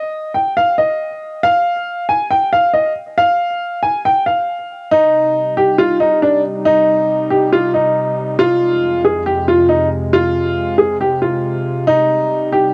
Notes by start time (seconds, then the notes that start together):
Already playing: D#5
0.34 G5
0.57 F5
0.78 D#5
1.43 F5
2.09 G#5
2.31 G5
2.53 F5
2.74 D#5
3.18 F5
3.83 G#5
4.05 G5
4.26 F5
4.91 C3 G3 D#4
5.57 G4
5.78 F4
6.00 D#4
6.22 D4
6.65 D#4
7.30 G4
7.53 F4
7.74 D#4
8.39 F2 G#3 F4
9.05 G#4
9.26 G4
9.48 F4
9.69 D#4
10.13 F4
10.78 G#4
11.01 G4
11.22 F4
11.87 G3 D#4
12.53 G4